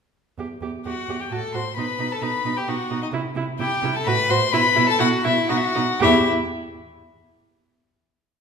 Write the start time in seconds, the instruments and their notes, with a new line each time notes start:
0.38 cello E2, viola G4
0.61 cello E2, viola G4
0.85 cello E2, violin F#4 F#5, viola G4
1.08 cello E2, viola G4
1.19 violin G4 G5
1.31 cello A2, viola F#4, violin A4 A5
1.53 cello A2, viola F#4, violin C5 C6
1.76 cello B2, viola D#4, violin B4 B5
1.99 cello B2, viola D#4
2.12 violin A4 A5
2.21 cello B2, viola D#4, violin B4 B5
2.44 cello B2, viola D#4
2.57 violin G4 G5
2.67 cello B2, viola D#4, violin F#4 F#5
2.90 cello B2, viola D#4
3.03 violin D#4 D#5
3.12 cello C3, viola E4
3.35 cello C3, viola E4
3.59 cello C3, viola E4, violin G4 G5
3.83 cello C3, viola E4
3.95 violin A4 A5
4.06 cello A2, viola F#4, violin B4 B5
4.29 cello A2, viola F#4, violin C5 C6
4.52 cello B2, viola E4, violin B4 B5
4.75 cello B2, viola E4
4.87 violin A4 A5
4.99 cello B2, viola E4, violin F#4 F#5
5.24 cello B2, violin E4 E5, viola E4
5.49 cello B2, viola D#4, violin F#4 F#5
5.57 violin E5
5.65 violin F#5
5.75 cello B2, viola D#4
6.00 cello E2, violin E4 E5, viola G4